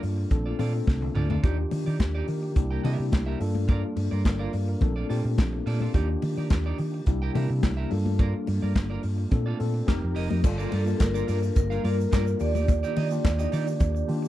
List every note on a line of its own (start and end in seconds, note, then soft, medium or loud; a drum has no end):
0.00 0.24 G2 medium
0.00 0.29 G3 medium
0.00 0.30 A#3 medium
0.00 0.33 A#3 medium
0.00 0.31 D4 medium
0.00 2.53 D4 medium
0.00 0.30 F4 medium
0.00 0.31 F4 medium
0.00 0.32 A4 medium
0.00 muted clean electric guitar stroke soft
0.00 open hi-hat medium
0.18 muted clean electric guitar stroke soft
0.30 0.52 A#1 loud
0.30 1.43 A3 medium
0.30 3.38 A#3 medium
0.30 0.54 C4 medium
0.30 0.55 D4 medium
0.30 0.55 F4 medium
0.30 0.55 A4 medium
0.30 muted clean electric guitar stroke soft
0.30 kick loud
0.30 closed hi-hat medium
0.30 low conga medium
0.46 0.56 F4 medium
0.46 0.56 A4 soft
0.46 0.56 D5 medium
0.58 0.80 A#2 medium
0.58 1.30 C4 medium
0.58 1.31 D4 medium
0.58 0.73 F4 medium
0.58 1.31 F4 medium
0.58 1.31 A4 medium
0.58 0.74 A4 medium
0.58 0.73 D5 medium
0.58 open hi-hat medium
0.58 low conga medium
0.74 muted clean electric guitar stroke soft
0.87 1.08 C2 medium
0.87 muted clean electric guitar stroke soft
0.87 kick loud
0.87 snare soft
0.87 high conga medium
1.02 muted clean electric guitar stroke soft
1.02 high tom soft
1.15 1.36 D2 loud
1.15 1.29 F4 medium
1.15 1.29 A4 medium
1.15 1.29 D5 medium
1.15 mid tom medium
1.30 1.41 F4 soft
1.30 1.40 A4 medium
1.30 1.40 D5 medium
1.30 floor tom medium
1.30 high conga medium
1.42 1.64 D#2 loud
1.42 2.56 D#3 medium
1.42 2.38 A#3 medium
1.42 2.38 D4 medium
1.42 1.57 D#4 medium
1.42 2.39 F4 medium
1.42 1.58 G4 medium
1.42 2.00 G4 medium
1.42 2.56 G4 medium
1.42 1.57 D5 medium
1.42 kick loud
1.42 closed hi-hat medium
1.42 muted conga medium
1.58 muted clean electric guitar stroke soft
1.71 1.83 D#3 medium
1.71 muted clean electric guitar stroke soft
1.71 open hi-hat medium
1.71 muted conga medium
1.86 1.97 D#3 medium
1.86 1.97 D#4 soft
1.86 1.97 G4 medium
1.86 1.96 D5 medium
2.00 2.21 D#2 loud
2.00 muted clean electric guitar stroke soft
2.00 kick loud
2.00 snare loud
2.00 clap medium
2.00 closed hi-hat medium
2.00 high conga medium
2.15 2.26 D#4 medium
2.15 2.27 G4 medium
2.15 2.27 D5 medium
2.28 2.49 D#3 medium
2.28 2.42 A#4 medium
2.28 muted clean electric guitar stroke soft
2.28 open hi-hat medium
2.43 2.56 G4 medium
2.43 muted clean electric guitar stroke soft
2.56 2.77 C2 medium
2.56 3.40 C3 medium
2.56 4.79 G3 medium
2.56 2.80 A#3 medium
2.56 2.80 D4 medium
2.56 3.40 E4 medium
2.56 2.80 E4 medium
2.56 2.80 G4 medium
2.56 muted clean electric guitar stroke soft
2.56 kick loud
2.56 closed hi-hat medium
2.71 2.82 G4 medium
2.71 2.81 A#4 medium
2.71 2.81 G5 medium
2.83 2.95 C3 medium
2.83 3.39 A#3 medium
2.83 3.39 D4 medium
2.83 3.41 E4 medium
2.83 3.04 G4 medium
2.83 3.41 G4 medium
2.83 2.99 A#4 medium
2.83 2.97 E5 medium
2.83 open hi-hat medium
2.83 low conga medium
2.99 3.09 C3 medium
2.99 muted clean electric guitar stroke soft
3.12 3.33 C2 medium
3.12 muted clean electric guitar stroke soft
3.12 kick loud
3.12 snare loud
3.12 clap medium
3.12 closed hi-hat medium
3.12 high conga medium
3.26 3.40 G4 medium
3.26 3.39 A#4 medium
3.26 3.40 E5 medium
3.40 3.82 G2 loud
3.40 4.35 A#3 medium
3.40 4.80 A#3 medium
3.40 4.35 D4 medium
3.40 7.03 D4 medium
3.40 4.36 F4 medium
3.40 4.80 F4 medium
3.40 4.25 A4 loud
3.40 muted clean electric guitar stroke soft
3.40 open hi-hat medium
3.55 muted clean electric guitar stroke soft
3.55 high conga medium
3.68 3.83 F4 medium
3.68 3.83 A#4 medium
3.68 3.82 D5 medium
3.68 kick loud
3.68 closed hi-hat medium
3.68 muted conga medium
3.84 muted clean electric guitar stroke soft
3.96 4.08 G2 medium
3.96 muted clean electric guitar stroke soft
3.96 open hi-hat medium
3.96 muted conga soft
4.11 4.22 G2 medium
4.11 4.22 F4 soft
4.11 4.22 A#4 medium
4.11 4.21 D5 medium
4.25 4.46 G1 medium
4.25 4.39 A#4 medium
4.25 muted clean electric guitar stroke soft
4.25 kick loud
4.25 snare loud
4.25 clap medium
4.25 closed hi-hat medium
4.25 high conga medium
4.39 4.52 F4 medium
4.39 4.53 A#4 medium
4.39 4.52 D5 medium
4.39 4.53 F5 medium
4.53 4.74 G2 medium
4.53 4.68 D5 medium
4.53 muted clean electric guitar stroke soft
4.53 open hi-hat medium
4.68 4.95 A#4 medium
4.68 muted clean electric guitar stroke soft
4.81 5.02 A#1 loud
4.81 5.93 A3 medium
4.81 5.93 A#3 medium
4.81 5.05 C4 medium
4.81 5.06 D4 medium
4.81 5.06 F4 medium
4.81 5.06 A4 medium
4.81 muted clean electric guitar stroke soft
4.81 kick loud
4.81 closed hi-hat medium
4.81 low conga medium
4.96 5.07 F4 medium
4.96 5.06 A4 medium
4.96 5.06 D5 medium
5.09 5.21 A#2 medium
5.09 5.81 C4 medium
5.09 5.81 D4 medium
5.09 5.24 F4 medium
5.09 5.81 F4 medium
5.09 5.82 G4 medium
5.09 5.24 A4 medium
5.09 5.23 D5 medium
5.09 open hi-hat medium
5.24 5.34 A#2 loud
5.24 muted clean electric guitar stroke soft
5.38 5.59 A#1 loud
5.38 muted clean electric guitar stroke soft
5.38 kick loud
5.38 snare loud
5.38 clap medium
5.38 closed hi-hat medium
5.38 high conga medium
5.53 muted clean electric guitar stroke soft
5.66 5.87 A#2 medium
5.66 5.80 F4 medium
5.66 5.81 A4 medium
5.66 5.80 D5 medium
5.66 open hi-hat medium
5.81 5.91 F4 medium
5.81 5.91 A4 medium
5.81 5.91 D5 medium
5.81 high conga medium
5.94 6.15 D#2 medium
5.94 7.05 D#3 medium
5.94 7.89 A#3 medium
5.94 6.89 A#3 medium
5.94 6.89 D4 medium
5.94 6.08 D#4 medium
5.94 6.89 F4 medium
5.94 7.06 G4 medium
5.94 6.09 G4 medium
5.94 6.90 G4 medium
5.94 6.08 D5 medium
5.94 kick loud
5.94 closed hi-hat medium
5.94 muted conga medium
6.09 muted clean electric guitar stroke medium
6.22 6.34 D#3 loud
6.22 muted clean electric guitar stroke soft
6.22 open hi-hat medium
6.22 muted conga medium
6.37 6.47 D#3 medium
6.37 6.48 D#4 soft
6.37 6.47 G4 soft
6.37 6.47 D5 medium
6.50 6.71 D#2 medium
6.50 muted clean electric guitar stroke soft
6.50 kick loud
6.50 snare loud
6.50 clap medium
6.50 closed hi-hat medium
6.50 high conga medium
6.66 6.78 D#4 medium
6.66 6.79 G4 medium
6.66 6.78 D5 medium
6.78 7.00 D#3 loud
6.78 muted clean electric guitar stroke soft
6.78 open hi-hat medium
6.94 muted clean electric guitar stroke soft
7.06 7.28 C2 medium
7.06 7.91 C3 medium
7.06 9.30 G3 medium
7.06 7.30 A#3 medium
7.06 7.30 D4 medium
7.06 7.31 E4 medium
7.06 7.91 E4 medium
7.06 7.31 G4 medium
7.06 muted clean electric guitar stroke soft
7.06 kick loud
7.06 closed hi-hat medium
7.22 7.32 G4 medium
7.22 7.32 A#4 medium
7.22 7.31 G5 medium
7.34 7.46 C3 medium
7.34 7.89 A#3 medium
7.34 7.89 D4 medium
7.34 7.91 E4 medium
7.34 7.49 G4 medium
7.34 7.92 G4 medium
7.34 7.49 A#4 medium
7.34 7.49 E5 medium
7.34 open hi-hat medium
7.34 muted conga soft
7.34 low conga medium
7.50 7.60 C3 medium
7.50 muted clean electric guitar stroke soft
7.63 7.84 C2 medium
7.63 muted clean electric guitar stroke soft
7.63 kick loud
7.63 snare loud
7.63 clap medium
7.63 closed hi-hat medium
7.63 high conga medium
7.77 7.91 G4 medium
7.77 7.90 A#4 medium
7.77 7.90 E5 medium
7.90 8.33 G2 loud
7.90 8.85 A#3 medium
7.90 9.31 A#3 medium
7.90 8.85 D4 medium
7.90 9.86 D4 medium
7.90 8.86 F4 medium
7.90 9.31 F4 medium
7.90 8.86 A4 medium
7.90 muted clean electric guitar stroke soft
7.90 open hi-hat medium
8.05 muted clean electric guitar stroke soft
8.05 high conga medium
8.19 8.33 F4 medium
8.19 8.34 A#4 medium
8.19 8.33 D5 medium
8.19 kick loud
8.19 closed hi-hat medium
8.19 muted conga medium
8.34 muted clean electric guitar stroke soft
8.47 8.59 G2 medium
8.47 muted clean electric guitar stroke soft
8.47 open hi-hat medium
8.47 muted conga soft
8.62 8.72 G2 medium
8.62 8.73 F4 soft
8.62 8.72 A#4 medium
8.62 8.72 D5 medium
8.75 8.96 G1 medium
8.75 muted clean electric guitar stroke soft
8.75 kick loud
8.75 snare loud
8.75 clap medium
8.75 closed hi-hat medium
8.75 high conga medium
8.90 9.02 F4 medium
8.90 9.02 A#4 medium
8.90 9.03 D5 medium
9.03 9.24 G2 medium
9.03 muted clean electric guitar stroke soft
9.03 open hi-hat medium
9.18 muted clean electric guitar stroke soft
9.31 9.53 A#2 medium
9.31 9.88 A3 medium
9.31 9.88 A#3 medium
9.31 9.55 C4 medium
9.31 9.55 D4 medium
9.31 9.56 F4 medium
9.31 9.56 A4 medium
9.31 muted clean electric guitar stroke soft
9.31 kick loud
9.31 closed hi-hat medium
9.31 low conga medium
9.46 9.58 F4 medium
9.46 9.59 A4 medium
9.46 9.59 D5 medium
9.59 9.81 A#2 medium
9.59 9.86 C4 medium
9.59 9.88 D4 medium
9.59 9.88 F4 medium
9.59 9.88 A4 medium
9.59 muted clean electric guitar stroke soft
9.59 open hi-hat medium
9.74 muted clean electric guitar stroke soft
9.87 9.99 F1 medium
9.87 10.44 F3 medium
9.87 10.35 C4 medium
9.87 10.35 D#4 medium
9.87 10.44 D#4 medium
9.87 10.35 G4 medium
9.87 10.44 G4 medium
9.87 10.36 A#4 loud
9.87 10.44 A#4 medium
9.87 muted clean electric guitar stroke soft
9.87 kick loud
9.87 snare medium
9.87 clap medium
9.87 closed hi-hat medium
9.87 high conga medium
10.02 10.13 F2 medium
10.02 muted clean electric guitar stroke soft
10.15 10.27 F1 loud
10.15 10.30 G4 medium
10.15 10.29 A#4 medium
10.15 10.28 D#5 loud
10.15 open hi-hat medium
10.30 10.41 F2 medium
10.30 10.41 G4 soft
10.30 10.41 A#4 medium
10.30 10.40 D#5 medium
10.30 high conga medium
10.43 10.65 G1 loud
10.43 12.39 G3 medium
10.43 10.79 A#3 medium
10.43 12.39 A#3 medium
10.43 10.79 D4 medium
10.43 14.28 D4 medium
10.43 10.80 F4 medium
10.43 12.39 F4 medium
10.43 10.80 A4 loud
10.43 muted clean electric guitar stroke soft
10.43 kick loud
10.43 crash loud
10.43 muted conga medium
10.43 shaker medium
10.58 10.70 F4 medium
10.58 10.71 A#4 medium
10.58 10.71 D5 medium
10.58 shaker medium
10.71 10.93 G2 medium
10.71 10.83 F4 medium
10.71 11.02 A4 medium
10.71 10.83 A#4 medium
10.71 10.84 D5 medium
10.71 open hi-hat medium
10.71 muted conga medium
10.86 11.69 A#3 medium
10.86 11.69 D4 medium
10.86 11.69 F4 medium
10.86 11.69 A#4 medium
10.86 muted clean electric guitar stroke medium
10.86 shaker soft
11.00 11.21 G1 loud
11.00 11.56 A#4 medium
11.00 muted clean electric guitar stroke soft
11.00 kick loud
11.00 snare loud
11.00 clap loud
11.00 closed hi-hat medium
11.00 high conga medium
11.00 shaker medium
11.14 11.26 F4 medium
11.14 11.27 A#4 medium
11.14 11.27 D5 medium
11.14 shaker medium
11.27 11.49 G2 loud
11.27 11.39 F4 medium
11.27 11.39 A#4 medium
11.27 11.40 D5 medium
11.27 open hi-hat medium
11.27 shaker medium
11.42 muted clean electric guitar stroke medium
11.42 shaker medium
11.56 11.77 G1 loud
11.56 12.43 A#4 medium
11.56 muted clean electric guitar stroke soft
11.56 kick loud
11.56 closed hi-hat medium
11.56 shaker medium
11.70 11.82 F4 medium
11.70 11.83 A#4 medium
11.70 11.83 F5 medium
11.70 shaker soft
11.83 12.05 G2 medium
11.83 12.38 A#3 medium
11.83 12.39 D4 medium
11.83 11.95 F4 medium
11.83 12.39 F4 medium
11.83 11.95 A#4 medium
11.83 12.41 A#4 medium
11.83 11.96 D5 medium
11.83 open hi-hat medium
11.83 muted conga soft
11.99 muted clean electric guitar stroke medium
11.99 shaker medium
12.12 12.33 G2 medium
12.12 12.26 F4 medium
12.12 12.26 A#4 medium
12.12 12.25 D5 medium
12.12 kick loud
12.12 snare loud
12.12 clap medium
12.12 closed hi-hat medium
12.12 high conga medium
12.12 shaker medium
12.26 muted clean electric guitar stroke soft
12.26 shaker medium
12.39 12.82 D#2 loud
12.39 14.28 D#3 medium
12.39 12.99 A#3 medium
12.39 14.28 A#3 medium
12.39 12.99 D4 medium
12.39 12.99 F4 medium
12.39 13.00 G4 medium
12.39 14.28 G4 medium
12.39 14.05 D5 loud
12.39 muted clean electric guitar stroke soft
12.39 open hi-hat medium
12.39 shaker medium
12.55 12.66 D#4 soft
12.55 12.65 G4 medium
12.55 12.65 D5 medium
12.55 high conga medium
12.55 shaker medium
12.68 muted clean electric guitar stroke soft
12.68 kick loud
12.68 closed hi-hat medium
12.68 muted conga medium
12.68 shaker medium
12.83 12.94 D#4 medium
12.83 12.95 G4 medium
12.83 12.96 D5 medium
12.83 shaker medium
12.96 13.18 D#3 medium
12.96 13.07 D#4 medium
12.96 13.08 G4 medium
12.96 13.08 D#5 medium
12.96 open hi-hat medium
12.96 muted conga medium
13.11 13.93 A#3 medium
13.11 13.93 D4 medium
13.11 13.94 F4 medium
13.11 13.94 G4 loud
13.11 muted clean electric guitar stroke soft
13.11 shaker medium
13.24 13.45 D#2 loud
13.24 muted clean electric guitar stroke soft
13.24 kick loud
13.24 snare loud
13.24 clap medium
13.24 closed hi-hat medium
13.24 high conga medium
13.24 shaker medium
13.39 13.50 D#4 medium
13.39 13.49 G4 medium
13.39 13.49 D#5 medium
13.39 shaker medium
13.52 13.74 D#3 loud
13.52 13.67 D#4 medium
13.52 13.67 G4 medium
13.52 13.66 D5 loud
13.52 open hi-hat medium
13.52 shaker medium
13.67 muted clean electric guitar stroke medium
13.67 shaker medium
13.80 14.01 D#2 loud
13.80 muted clean electric guitar stroke medium
13.80 kick loud
13.80 closed hi-hat medium
13.80 low conga medium
13.80 shaker medium
13.95 muted clean electric guitar stroke medium
13.95 shaker soft
14.08 14.28 D#3 medium
14.08 14.28 A#3 loud
14.08 14.28 D4 medium
14.08 14.28 F4 medium
14.08 14.28 G4 loud
14.08 open hi-hat medium
14.22 muted clean electric guitar stroke medium
14.22 shaker medium